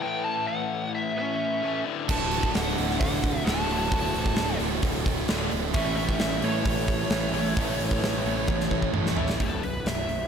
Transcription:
Already playing: A3 E4 B4
0.02 A2 E3 A3 G5
0.25 A5
0.47 F#5
0.95 E5
1.17 C#4 E5
1.62 A2 E3 A3
1.84 D2 A2 D3 D4 A4 E5
2.08 D1 D2 A2 D3 F#4 A5, kick, crash
2.31 open hi-hat
2.43 kick
2.55 D1 D4 F#5, snare, open hi-hat
2.77 D1 D2 A2 D3, open hi-hat
2.91 snare
3.00 D1 D4 F#5, kick, open hi-hat
3.24 kick, open hi-hat
3.45 D1 D2 A2 D3 F#4 A5, snare, open hi-hat
3.49 A2 D3
3.68 D1 D2 A2 D3, open hi-hat
3.90 D1 D2 F#4, kick, open hi-hat
3.94 A2 D3 A5
4.14 D1, open hi-hat
4.26 kick
4.36 D1, snare, open hi-hat
4.59 D1 A2 D3, open hi-hat
4.63 D2
4.82 D1, kick, open hi-hat
5.06 D1, kick, open hi-hat
5.28 D1 D2 A2 D3, snare, open hi-hat
5.33 D3
5.51 D1, open hi-hat
5.73 A1 A2 E3 A3 C#4 E4 B4 E5, kick, open hi-hat
5.77 E3 A3
5.96 C#4 E5, open hi-hat
6.09 kick
6.19 A1, snare, open hi-hat
6.42 A1 E3 A3 C#5, open hi-hat
6.46 A2
6.65 A1, kick, open hi-hat
6.88 kick, open hi-hat
7.09 A1 A2 E3 A3, snare, open hi-hat
7.32 A1 A2 E3 A3, open hi-hat
7.54 A1 A2 E3 A3, kick, open hi-hat
7.59 E3 A3
7.79 A1, open hi-hat
7.91 kick
8.01 A1, snare, open hi-hat
8.25 A1 A2 E3 A3, open hi-hat
8.48 A1, kick, high tom
8.60 snare
8.71 A1, kick
8.82 kick
8.93 A1 A2 E3 A3, mid tom
9.06 snare
9.16 A1 A2 E3 A3, floor tom
9.30 snare
9.39 B0 B1 F#2 B2 A4, kick, open hi-hat
9.61 B0 B1 F#2 B4, open hi-hat
9.84 B0 B1 F#2, snare, open hi-hat
9.88 E5
10.07 B0 B1 F#2, open hi-hat

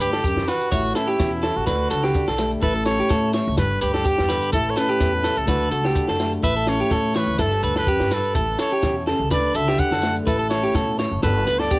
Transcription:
Already playing: G2
0.00 D2 D4 G4 B4, maracas
0.13 A4, snare
0.24 F#2 G4, kick, maracas
0.36 E2, snare
0.48 F#4 B4, muted nylon-string guitar stroke, snare, maracas
0.61 maracas
0.72 A1 A2 E4 C#5, kick, maracas
0.95 C#4 E4 A4, snare, maracas
1.08 G4
1.19 E2 B2, kick, snare, maracas
1.43 A4, snare
1.56 A1 F#4
1.67 D2 D3 D4 B4, kick, snare, maracas
1.91 C#2 A4, snare, maracas
2.04 G4, snare
2.15 D4, kick, maracas
2.28 B1 A4, snare
2.38 A3, snare, maracas
2.51 maracas
2.62 A1 A2 E4 A4 B4, kick, maracas
2.76 A4
2.85 C#4 C#5, snare, maracas
3.00 G4
3.09 A2 A3 A4, kick, snare, maracas
3.33 C#5, snare, maracas
3.47 C#2
3.57 G1 G2 G4 B4, muted clean electric guitar stroke, kick, snare, maracas
3.81 D2 D4 G4 B4, maracas
3.94 A4, snare
4.04 B3 G4, kick, maracas
4.18 E2, snare
4.29 D3 B4, snare, maracas
4.42 maracas
4.52 A1 A2 E4 A4, kick, maracas
4.70 C#5
4.76 C#4 A4 B4, snare, maracas
4.89 G4, maracas
5.00 E2 A3, kick, snare, maracas
5.23 A4, muted nylon-string guitar stroke, snare, maracas
5.37 C#2 A4, maracas
5.47 D2 D3 A3 D4 F#4 B4, kick, snare, maracas
5.71 C#2 F#4 A4, maracas
5.85 G4, snare
5.96 D4, kick, maracas
6.08 F#2 A4, snare
6.19 A3, snare, maracas
6.33 maracas
6.43 A1 A2 E4 B4 E5, kick, maracas
6.57 A4
6.67 C#4 C#5, snare, maracas
6.80 G4
6.91 A2 A3 A4, kick, snare, maracas
7.15 E3 B4 C#5, snare, maracas
7.28 D2
7.38 G1 G2 E4 A4, kick, snare, maracas
7.51 G4
7.63 D2 D4 B4, maracas
7.76 A4 B4, snare
7.86 F#2 G4, kick, maracas
8.00 G2, snare
8.11 G2 A4 B4, snare, maracas
8.24 maracas
8.34 A1 E4 A4, muted nylon-string guitar stroke, kick, maracas
8.59 C#4 A4 C#5, snare, maracas
8.72 G4
8.82 E2 B2, kick, snare, maracas
9.07 C#3 A4, snare
9.19 C#2
9.31 D2 D3 B4 D5, muted nylon-string guitar stroke, kick, snare, maracas
9.54 C#2 F#4 A4 E5, maracas
9.68 G4, snare
9.78 D4 F#5, kick, maracas
9.91 F#2 A4, snare
10.02 A3, snare, maracas
10.15 maracas
10.26 A1 A2 E4 A4 B4, kick, maracas
10.39 A4
10.50 C#4 C#5, snare, maracas
10.64 G4
10.75 A2 B2 A4, kick, snare, maracas
10.99 A2 C#5, snare, maracas
11.12 F#1
11.23 G1 G2 D3 B3 D4 A4 B4, kick, snare, maracas
11.27 G4
11.47 D2 B4, muted nylon-string guitar stroke, snare, maracas
11.59 A4 D5, snare
11.71 B3 G4, kick, maracas

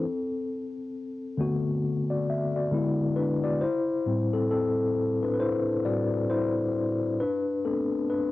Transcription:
Already playing: C4 A4
1.37 D3 A3 B3 F#4
2.10 F#4 D5
2.30 E5
2.56 F#4 D5
2.71 D3 G#3 B3 E4
3.16 D4 B4
3.44 F#4 D5
3.61 E4 C5
4.06 A2 G3 C4
4.33 C4 A4
4.51 C4 A4
5.23 D4 B4
5.34 B4
5.40 E4 C5
5.85 A2 G3 C4 F#4 D5
6.30 E4 C5
7.20 D4 B4
7.65 A3 B3 C4 D4 A4
8.10 D4 B4

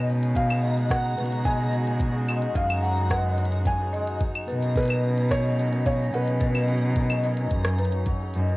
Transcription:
Already playing: B2 C#3 G#3 C#4 D#4 A#5
0.06 C#3 G#3, cabasa
0.23 closed hi-hat, cabasa
0.35 F#3 F5, kick, closed hi-hat, cabasa
0.49 C#3 F#4, cabasa, claves
0.63 G#3 D#5
0.78 B2, closed hi-hat, cabasa
0.90 C#3 F#5, kick, cross-stick, closed hi-hat, cabasa
1.18 B2 F#3 B4, closed hi-hat, cabasa
1.26 closed hi-hat
1.32 C#3, closed hi-hat, cabasa
1.45 G#3 G#5, kick, closed hi-hat, cabasa
1.60 B2, cabasa
1.73 C#3, closed hi-hat, cabasa
1.87 closed hi-hat, cabasa
2.00 F#3, kick, closed hi-hat, cabasa
2.15 C#3, cabasa
2.19 cabasa
2.24 cabasa
2.29 G#3, cabasa, claves
2.37 cabasa
2.42 B2, closed hi-hat, cabasa
2.55 F#2 C#3 F5, kick, closed hi-hat, cabasa
2.70 cabasa, claves
2.83 F#3 F#5, cabasa
2.98 C#3, closed hi-hat, cabasa
3.10 G#3 B4 F#5, kick, cross-stick, closed hi-hat, cabasa
3.26 B2
3.38 C#3, closed hi-hat, cabasa
3.45 closed hi-hat
3.52 closed hi-hat, cabasa
3.65 F#3 G#5, kick, closed hi-hat, cabasa
3.80 C#3, cabasa
3.93 G#3 D#5, closed hi-hat, cabasa
4.07 B2, closed hi-hat, cabasa
4.20 C#3, kick, closed hi-hat, cabasa
4.35 F#3, cabasa, claves
4.48 B2 D#3 B4, cabasa
4.63 C#3, closed hi-hat, cabasa
4.75 A#2 C#4 B4, kick, closed hi-hat, cabasa
4.78 closed hi-hat
4.81 closed hi-hat
4.83 closed hi-hat
4.86 closed hi-hat
4.88 B2, closed hi-hat, cabasa, claves
5.04 C#3, cabasa
5.18 closed hi-hat, cabasa
5.31 D#3 C#5, kick, cross-stick, closed hi-hat, cabasa
5.46 C#3
5.60 A#2, closed hi-hat, cabasa
5.73 B2, closed hi-hat, cabasa
5.86 C#3 C#5 F5, kick, closed hi-hat, cabasa
6.00 cabasa
6.14 B2 D#3 B4 F#5, closed hi-hat, cabasa
6.28 C#3, closed hi-hat, cabasa
6.41 A#2 B4, kick, closed hi-hat, cabasa
6.55 B2, cabasa, claves
6.58 cabasa
6.62 cabasa
6.65 closed hi-hat, cabasa
6.68 C#3, cabasa
6.72 cabasa
6.76 cabasa
6.79 cabasa
6.82 cabasa
6.96 D#3, kick, closed hi-hat, cabasa
7.10 C#3, cabasa, claves
7.24 A#2 D#5, closed hi-hat, cabasa
7.37 B2, closed hi-hat, cabasa
7.51 F#2 C#3, kick, closed hi-hat, cabasa
7.65 cross-stick, cabasa
7.79 C#3 B4, closed hi-hat, cabasa
7.85 closed hi-hat
7.92 F#3, closed hi-hat, cabasa
8.06 F#3, kick, closed hi-hat, cabasa
8.20 C#3, cabasa
8.34 F#2 B2, closed hi-hat, cabasa
8.48 B2, cabasa

